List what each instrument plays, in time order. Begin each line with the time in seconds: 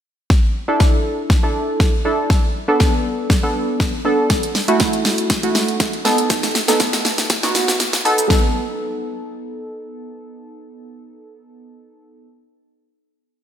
0.30 kick, snare
0.68 synth keys D4 E4 A4
0.80 kick, snare
1.30 kick, snare
1.43 synth keys D4 E4 A4
1.80 kick, snare
2.05 synth keys D4 E4 A4
2.30 kick, snare
2.68 synth keys B3 D4 A4
2.80 kick, snare
3.30 kick, snare
3.43 synth keys B3 D4 A4
3.80 kick, snare
4.05 synth keys B3 D4 A4
4.30 kick, snare, closed hi-hat
4.43 closed hi-hat
4.55 snare, open hi-hat
4.68 synth keys A3 E4 F#4, closed hi-hat
4.80 kick, snare, closed hi-hat
4.93 closed hi-hat
5.05 snare, open hi-hat
5.18 closed hi-hat
5.30 kick, snare, closed hi-hat
5.43 synth keys A3 E4 F#4, closed hi-hat
5.55 snare, open hi-hat
5.68 closed hi-hat
5.80 kick, snare, closed hi-hat
5.93 closed hi-hat
6.05 synth keys B3 D#4 A4, snare, open hi-hat
6.18 closed hi-hat
6.30 kick, snare, closed hi-hat, shaker
6.43 snare, closed hi-hat, shaker
6.55 snare, open hi-hat, shaker
6.68 synth keys B3 D#4 A4, snare, closed hi-hat, shaker
6.80 kick, snare, closed hi-hat, shaker
6.93 snare, closed hi-hat, shaker
7.05 snare, open hi-hat, shaker
7.18 snare, closed hi-hat, shaker
7.30 kick, snare, closed hi-hat, shaker
7.43 synth keys B3 D#4 F#4, snare, closed hi-hat, shaker
7.55 snare, open hi-hat, shaker
7.68 snare, closed hi-hat, shaker
7.80 snare, closed hi-hat, shaker
7.93 snare, closed hi-hat, shaker
8.05 synth keys B3 D#4 A4, open hi-hat, shaker
8.18 closed hi-hat, shaker
8.28 synth keys B3 D#4 A4, kick, snare